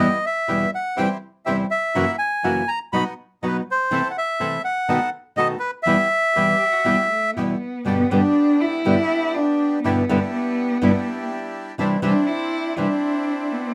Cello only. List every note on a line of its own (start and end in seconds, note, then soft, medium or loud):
6.34 6.73 G4 medium
6.71 6.85 F#4 medium
6.84 7.09 G4 medium
7.10 7.35 A3 medium
7.33 7.85 B3 medium
7.86 8.13 B3 medium
8.11 8.62 D4 loud
8.61 9.37 E4 loud
9.35 9.81 D4 medium
9.82 10.29 B3 medium
10.33 11.27 B3 medium
12.03 12.28 D4 medium
12.27 12.78 E4 medium
12.77 13.53 D4 medium
13.51 13.74 B3 medium